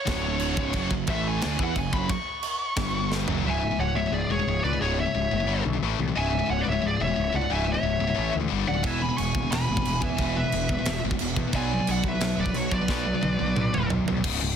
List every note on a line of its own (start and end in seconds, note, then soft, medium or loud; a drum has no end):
0.00 0.86 C#5 loud
0.05 0.55 D1 medium
0.05 0.57 D2 medium
0.05 0.57 A2 loud
0.05 0.58 D3 loud
0.05 kick loud
0.05 snare loud
0.05 china medium
0.40 china medium
0.57 0.74 C#1 medium
0.57 0.74 C#2 medium
0.57 0.74 G#2 loud
0.57 0.75 C#3 loud
0.57 kick loud
0.73 0.90 F#1 medium
0.73 0.91 F#2 loud
0.73 0.91 C#3 loud
0.73 0.92 F#3 loud
0.73 kick loud
0.73 china medium
0.91 1.07 F#1 medium
0.91 1.06 F#2 medium
0.91 1.06 C#3 medium
0.91 kick medium
1.07 1.40 A1 loud
1.07 1.42 A2 loud
1.07 1.42 E3 loud
1.07 1.42 A3 loud
1.07 1.26 E5 loud
1.07 kick loud
1.07 china medium
1.28 1.60 G#5 medium
1.42 1.58 D2 loud
1.42 1.59 D3 loud
1.42 1.60 A3 loud
1.42 1.60 D4 loud
1.42 snare loud
1.42 china medium
1.59 1.75 E2 loud
1.59 1.76 E3 medium
1.59 1.76 B3 medium
1.59 1.77 E4 loud
1.59 kick loud
1.63 1.78 F#5 loud
1.76 1.92 F#1 medium
1.76 1.90 F#2 medium
1.76 1.91 C#3 medium
1.76 1.93 G#5 loud
1.76 kick loud
1.76 china medium
1.92 2.09 F#1 medium
1.92 2.09 F#2 loud
1.92 2.10 C#3 loud
1.92 2.10 F#3 loud
1.92 2.10 B5 loud
1.92 kick loud
2.09 3.08 C#6 loud
2.09 kick loud
2.09 china medium
2.43 china medium
2.76 3.24 G1 loud
2.76 3.26 G2 loud
2.76 3.27 D3 loud
2.76 3.27 G3 loud
2.76 kick loud
2.76 snare loud
2.76 china medium
3.12 snare medium
3.27 3.44 F#1 loud
3.27 3.44 F#2 loud
3.27 3.44 C#3 medium
3.27 3.44 F#3 loud
3.27 floor tom loud
3.45 3.69 C#1 medium
3.45 3.61 C#2 medium
3.45 3.61 G#2 loud
3.45 3.62 C#3 loud
3.45 3.77 E5 loud
3.50 3.80 G#5 loud
3.63 3.70 C#2 medium
3.63 3.70 G#2 medium
3.71 3.79 C#2 medium
3.71 3.79 G#2 medium
3.79 3.91 C#1 medium
3.79 3.95 C#2 medium
3.79 3.95 G#2 medium
3.79 3.95 C#5 medium
3.79 3.97 F#5 loud
3.94 4.07 C#1 loud
3.94 4.05 C#2 medium
3.94 4.05 G#2 medium
3.94 4.12 C#5 medium
3.94 4.14 E5 medium
4.06 4.11 C#2 medium
4.06 4.11 G#2 medium
4.11 4.24 C#1 loud
4.11 4.28 C#2 medium
4.11 4.28 G#2 medium
4.11 4.29 G#4 medium
4.11 4.30 D5 medium
4.30 4.42 E1 medium
4.30 4.38 C#2 medium
4.30 4.38 G#2 medium
4.30 4.62 G#4 medium
4.30 4.63 C#5 medium
4.39 4.47 C#2 medium
4.39 4.47 G#2 medium
4.47 4.59 C#1 loud
4.47 4.62 C#2 medium
4.47 4.63 G#2 medium
4.64 4.76 C#2 medium
4.64 4.73 C#2 medium
4.64 4.72 G#2 medium
4.64 4.79 B4 medium
4.64 4.81 D5 loud
4.73 4.80 C#2 medium
4.73 4.81 G#2 medium
4.80 5.05 C#1 loud
4.80 4.97 C#2 loud
4.80 4.97 G#2 loud
4.80 4.97 C#3 loud
4.80 4.96 G#4 medium
4.80 4.97 C#5 medium
4.98 5.05 C#2 medium
4.98 5.04 G#2 medium
4.98 5.61 C#5 medium
4.98 5.62 E5 medium
5.06 5.13 C#2 medium
5.06 5.13 G#2 medium
5.14 5.27 C#1 medium
5.14 5.29 C#2 medium
5.14 5.29 G#2 medium
5.31 5.50 F#1 medium
5.31 5.38 C#2 medium
5.31 5.39 G#2 medium
5.40 5.46 C#2 medium
5.40 5.47 G#2 medium
5.47 5.61 G1 loud
5.47 5.63 G2 loud
5.47 5.62 D3 loud
5.47 5.64 G3 loud
5.64 5.77 B1 loud
5.64 5.72 G2 medium
5.64 5.73 D3 medium
5.73 5.82 G2 medium
5.73 5.82 D3 medium
5.82 5.94 A1 loud
5.82 5.98 A2 loud
5.82 5.98 E3 loud
5.82 5.99 A3 loud
5.99 6.11 C2 medium
5.99 6.07 A2 medium
5.99 6.06 E3 medium
6.08 6.15 A2 medium
6.08 6.15 E3 medium
6.15 6.40 C#1 medium
6.15 6.30 C#2 medium
6.15 6.29 G#2 loud
6.15 6.32 C#3 loud
6.15 6.47 E5 loud
6.15 6.48 G#5 loud
6.31 6.39 C#2 medium
6.31 6.38 G#2 medium
6.39 6.45 C#2 medium
6.39 6.46 G#2 medium
6.46 6.62 C#1 medium
6.46 6.63 C#2 medium
6.46 6.63 G#2 medium
6.50 6.62 C#5 loud
6.50 6.61 F#5 loud
6.61 6.71 G#2 medium
6.61 6.67 B4 medium
6.61 6.66 D5 medium
6.66 6.79 C#1 medium
6.66 6.72 C#2 medium
6.66 6.83 C#5 medium
6.66 6.85 E5 medium
6.72 6.81 C#2 medium
6.72 6.81 G#2 medium
6.82 6.95 C#1 loud
6.82 6.98 C#2 medium
6.82 6.97 G#2 medium
6.87 7.01 G#4 medium
6.87 7.02 D5 medium
7.00 7.12 E1 medium
7.00 7.08 C#2 medium
7.00 7.06 G#2 medium
7.00 7.33 C#5 medium
7.00 7.35 E5 loud
7.07 7.14 C#2 medium
7.07 7.15 G#2 medium
7.16 7.29 C#1 loud
7.16 7.31 C#2 medium
7.16 7.31 G#2 medium
7.32 7.40 C#2 medium
7.32 7.46 C#2 medium
7.32 7.40 G#2 medium
7.32 7.51 D5 medium
7.32 7.52 F#5 medium
7.41 7.48 C#2 medium
7.41 7.49 G#2 medium
7.50 7.75 C#1 medium
7.50 7.65 C#2 medium
7.50 7.65 G#2 loud
7.50 7.66 C#3 loud
7.50 7.69 G#5 medium
7.55 7.68 E5 medium
7.66 7.73 C#2 medium
7.66 7.73 G#2 medium
7.72 7.82 C#2 medium
7.72 7.82 G#2 medium
7.72 8.33 C#5 medium
7.72 8.33 E5 medium
7.83 7.95 C#1 medium
7.83 7.98 C#2 medium
7.83 7.99 G#2 medium
7.99 8.12 C#1 loud
7.99 8.07 C#2 medium
7.99 8.06 G#2 medium
8.07 8.14 C#2 medium
8.07 8.16 G#2 medium
8.14 8.30 A1 medium
8.14 8.32 A2 loud
8.14 8.32 E3 medium
8.14 8.33 A3 loud
8.33 8.47 D2 medium
8.33 8.39 A2 medium
8.33 8.39 E3 medium
8.40 8.47 A2 medium
8.40 8.49 E3 medium
8.48 8.64 G1 medium
8.48 8.65 G2 loud
8.48 8.66 D3 loud
8.48 8.66 G3 loud
8.67 8.84 D1 medium
8.67 8.73 G2 medium
8.67 8.72 D3 medium
8.67 8.85 D5 medium
8.67 8.87 F#5 medium
8.74 8.82 G2 medium
8.74 8.83 D3 medium
8.83 9.09 E1 medium
8.83 9.00 E2 medium
8.83 9.00 B2 loud
8.83 9.00 E3 loud
8.83 9.02 E5 medium
8.83 kick loud
8.83 crash medium
8.87 9.03 G#5 medium
9.01 9.08 E2 medium
9.01 9.07 B2 loud
9.01 9.17 G#5 medium
9.01 9.17 B5 loud
9.08 9.16 E2 medium
9.08 9.16 B2 medium
9.17 9.31 E1 loud
9.17 9.33 E2 medium
9.17 9.33 B2 medium
9.17 9.50 G#5 medium
9.17 9.52 C#6 loud
9.17 crash medium
9.34 9.47 E1 loud
9.34 9.41 E2 medium
9.34 9.41 B2 medium
9.34 kick loud
9.42 9.49 E2 medium
9.42 9.49 B2 medium
9.50 9.64 E1 medium
9.50 9.66 E2 medium
9.50 9.66 B2 medium
9.50 9.99 G#5 medium
9.50 10.04 B5 loud
9.50 snare loud
9.50 crash medium
9.54 9.68 B2 loud
9.68 9.81 G#1 medium
9.68 9.74 E2 medium
9.68 9.74 B2 medium
9.75 9.81 E2 medium
9.75 9.81 B2 medium
9.75 kick medium
9.82 9.99 E2 medium
9.82 9.99 B2 medium
9.82 crash medium
9.86 9.98 E1 medium
9.86 10.02 E2 medium
9.86 10.02 B2 loud
10.00 10.08 E2 medium
10.00 10.14 E2 medium
10.00 10.07 B2 medium
10.00 10.35 E5 medium
10.00 10.37 G#5 loud
10.00 kick loud
10.09 10.16 E2 medium
10.09 10.17 B2 medium
10.17 10.43 E1 medium
10.17 10.34 E2 loud
10.17 10.35 B2 loud
10.17 10.35 E3 loud
10.17 kick loud
10.17 crash medium
10.36 10.43 E2 medium
10.36 10.43 B2 loud
10.36 11.00 B4 medium
10.36 11.00 E5 medium
10.44 10.52 E2 medium
10.44 10.53 B2 medium
10.52 10.65 E1 medium
10.52 10.68 E2 medium
10.52 10.69 B2 loud
10.52 crash medium
10.69 10.82 E1 loud
10.69 10.79 E2 medium
10.69 10.77 B2 medium
10.69 kick medium
10.79 10.86 E2 medium
10.79 10.86 B2 medium
10.85 10.99 E1 loud
10.85 11.02 E2 medium
10.85 11.02 B2 medium
10.85 snare loud
10.85 crash medium
11.04 11.16 G#1 medium
11.04 11.11 E2 medium
11.04 11.11 B2 medium
11.11 11.21 E2 medium
11.11 11.21 B2 medium
11.11 kick medium
11.19 11.33 E1 loud
11.19 11.36 E2 medium
11.19 11.36 B2 loud
11.19 crash medium
11.36 11.49 E2 loud
11.36 11.46 E2 medium
11.36 11.46 B2 loud
11.36 kick medium
11.47 11.54 E2 medium
11.47 11.53 B2 medium
11.53 11.78 B1 medium
11.53 11.70 B2 loud
11.53 11.71 F#3 loud
11.53 11.71 B3 medium
11.53 11.86 D5 loud
11.53 11.87 G#5 loud
11.53 kick loud
11.53 crash medium
11.72 11.79 B2 medium
11.72 11.77 F#3 medium
11.79 11.88 B2 medium
11.79 11.88 F#3 medium
11.87 12.00 B1 medium
11.87 12.04 B2 medium
11.87 12.04 F#3 loud
11.87 12.05 D5 medium
11.87 crash medium
11.91 12.07 F#5 loud
12.04 12.17 B1 loud
12.04 12.13 B2 medium
12.04 12.13 F#3 medium
12.04 kick loud
12.08 12.38 B4 medium
12.08 12.38 E5 medium
12.15 12.19 B2 medium
12.15 12.20 F#3 medium
12.20 12.33 B1 medium
12.20 12.36 B2 medium
12.20 12.37 F#3 loud
12.20 snare loud
12.20 crash medium
12.37 12.50 D1 medium
12.37 12.46 B2 medium
12.37 12.45 F#3 medium
12.37 12.57 D5 medium
12.42 12.56 B4 medium
12.42 kick medium
12.46 12.54 B2 medium
12.46 12.54 F#3 medium
12.54 12.67 B1 loud
12.54 12.70 B2 medium
12.54 12.70 F#3 medium
12.54 12.73 C#5 medium
12.54 crash medium
12.61 12.75 F#4 medium
12.71 12.84 B1 loud
12.71 12.80 B2 medium
12.71 12.80 F#3 medium
12.71 13.87 D5 medium
12.71 kick medium
12.78 12.88 B2 medium
12.78 12.88 F#3 medium
12.78 13.89 B4 medium
12.88 13.14 B1 medium
12.88 13.05 B2 medium
12.88 13.04 F#3 medium
12.88 13.05 B3 loud
12.88 kick loud
12.88 snare medium
13.05 13.14 B2 medium
13.05 13.13 F#3 medium
13.14 13.20 B2 medium
13.14 13.20 F#3 medium
13.21 13.35 B1 medium
13.21 13.37 B2 medium
13.21 13.37 F#3 medium
13.21 high tom medium
13.39 13.53 B1 medium
13.39 13.45 B2 medium
13.39 13.45 F#3 medium
13.46 13.54 B2 medium
13.46 13.54 F#3 medium
13.56 13.69 B1 loud
13.56 13.71 B2 medium
13.56 13.71 F#3 medium
13.56 mid tom medium
13.73 13.87 D1 medium
13.73 13.80 B2 medium
13.73 13.80 F#3 medium
13.73 mid tom medium
13.81 13.88 B2 medium
13.81 13.88 F#3 medium
13.90 14.04 B1 medium
13.90 14.05 B2 medium
13.90 14.05 F#3 loud
13.90 floor tom loud
14.08 14.20 B1 medium
14.08 14.15 B2 medium
14.08 14.15 F#3 medium
14.08 floor tom loud
14.17 14.23 B2 medium
14.17 14.24 F#3 medium
14.24 14.40 C#1 medium
14.24 14.40 C#2 loud
14.24 14.40 G#2 loud
14.24 14.41 C#3 loud
14.24 kick loud
14.24 crash loud
14.24 china medium
14.41 14.56 C#1 medium
14.41 14.55 C#2 medium
14.41 14.54 G#2 medium